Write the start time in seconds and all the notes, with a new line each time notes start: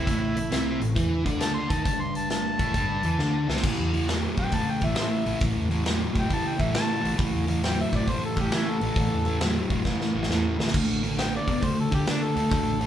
Already playing: E4
0.07 A1 A2 A3, kick, closed hi-hat
0.36 A1 A2, closed hi-hat
0.51 C2 C3 C4, snare, closed hi-hat
0.80 A1 A2, closed hi-hat
0.95 E2 E3 E4, kick, closed hi-hat
1.25 D2 D3 D4, kick, closed hi-hat
1.40 A5, snare, closed hi-hat
1.54 C6
1.69 D#2 D#3 D#4 A5, kick, closed hi-hat
1.84 G1 G2 G3 A5, kick, closed hi-hat
2.00 C6
2.15 A5, closed hi-hat
2.30 A5, snare, closed hi-hat
2.58 A1 A2 A3, kick, closed hi-hat
2.73 G1 G2 G3, kick, closed hi-hat
3.03 E2 E3 E4, closed hi-hat
3.18 D2 D3 D4, snare
3.48 C2 C3 C4, snare
3.57 snare
3.63 A1 A2 E3, kick, crash
3.79 E2
3.93 A2 E3, open hi-hat
4.08 A2 F#3, snare, open hi-hat
4.37 A2 F#3 G5, kick, open hi-hat
4.51 A2 E3 A5, kick, open hi-hat
4.71 G5
4.81 A1 A2 E3, kick, open hi-hat
4.85 E5
4.95 A2 E3, snare, open hi-hat
5.01 A4 C5 E5
5.25 A1 A2 E3, open hi-hat
5.40 A1 A2 E3, kick, open hi-hat
5.56 E2
5.70 A2 E3, open hi-hat
5.85 A2 F#3, snare, open hi-hat
6.14 A2 F#3, kick, open hi-hat
6.20 G5
6.28 A2 E3, kick, open hi-hat
6.33 A5
6.48 G5
6.58 A1 A2 E3 E5, kick, open hi-hat
6.72 A2 E3, snare, open hi-hat
6.76 A5
7.01 A1 A2 E3
7.05 open hi-hat
7.16 A1 A2 E3, kick, open hi-hat
7.33 E2
7.47 A2 E3, open hi-hat
7.63 A2 F#3 G5, snare, open hi-hat
7.81 E5
7.93 A2 F#3 D5, kick, open hi-hat
8.08 A2 E3 C5, kick, open hi-hat
8.25 A4
8.36 A1 A2 E3, kick, open hi-hat
8.41 G4
8.52 A2 E3, snare, open hi-hat
8.56 E4
8.70 A4
8.81 A1 A2 E3, open hi-hat
8.96 A1 A2 E3, kick, open hi-hat
9.12 E2
9.25 A2 E3, open hi-hat
9.40 A2 F#3, snare, open hi-hat
9.70 A2 F#3, kick, open hi-hat
9.85 A2 E3, kick, snare
10.01 snare
10.14 A1 A2 E3
10.23 snare
10.29 E2 A2 E3, snare
10.58 D2 A2 E3, snare
10.68 snare
10.73 D2 D3 A3, kick, crash
10.88 A1
11.03 D3 A3, open hi-hat
11.18 D3 B3 G5, snare, open hi-hat
11.37 D5
11.47 D3 B3 D5, kick, open hi-hat
11.62 D3 A3 C5, kick, open hi-hat
11.80 A4
11.91 D2 D3 A3 G4, kick, open hi-hat
12.07 D3 A3 D4, snare, open hi-hat
12.23 A4
12.36 D2 D3 A3, open hi-hat
12.51 D2 D3 A3, kick, open hi-hat
12.65 A1
12.81 D3 A3, open hi-hat